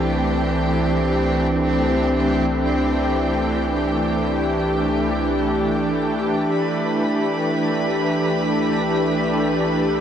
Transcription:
Already playing: synth drone C2, analog synth pad E3 A3 D4 G4, cello C4, violin section G4 G5
6.50 synth drone C2, violin section B4 B5

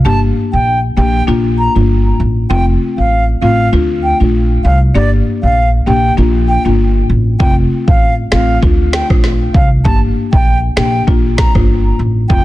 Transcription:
0.05 upright bass G1, marimba A#3 D4 G4, flute A5
0.53 upright bass A#1, flute G5
0.97 upright bass A#1, marimba A#3 D4 G4, flute G5
1.27 upright bass A#1, marimba A#3 D4 F4
1.59 flute A#5
1.75 upright bass G1, marimba A#3 D4 F4
2.20 upright bass A1
2.50 upright bass F1, marimba A3 C4 F4, flute G5
2.98 upright bass A1, flute F5
3.42 upright bass A1, marimba A3 C4 F4, flute F5
3.72 upright bass D2, marimba A3 D4 F4
4.03 flute G5
4.20 upright bass A#1, marimba A3 D4 F4
4.64 upright bass C2, flute F5
4.95 upright bass G1, marimba A#3 D4 G4, flute D5
5.43 upright bass A#1, flute F5
5.87 upright bass A#1, marimba A#3 D4 G4, flute G5
6.17 upright bass A#1, marimba A#3 D4 F4
6.49 flute G5
6.65 upright bass G1, marimba A#3 D4 F4
7.10 upright bass A1
7.40 upright bass F1, marimba A3 C4 F4, flute G5, kick
7.88 upright bass A1, flute F5, kick
8.31 upright bass A1, marimba A3 C4 F4, flute F5, finger snap, snare
8.62 upright bass D2, marimba A3 D4 F4, kick
8.93 flute G5, finger snap, snare
9.10 upright bass A#1, marimba A3 D4 F4, kick, cross-stick
9.24 snare
9.54 upright bass C2, flute F5, kick
9.85 upright bass G1, marimba A#3 D4 G4, flute A5, kick
10.33 upright bass A#1, flute G5, kick
10.77 upright bass A#1, marimba A#3 D4 G4, flute G5, finger snap, snare
11.07 upright bass A#1, marimba A#3 D4 F4, kick
11.38 flute A#5, finger snap, kick, snare
11.55 upright bass G1, marimba A#3 D4 F4, kick, cross-stick
11.99 upright bass A1
12.30 upright bass F1, marimba A3 C4 F4, flute G5, kick

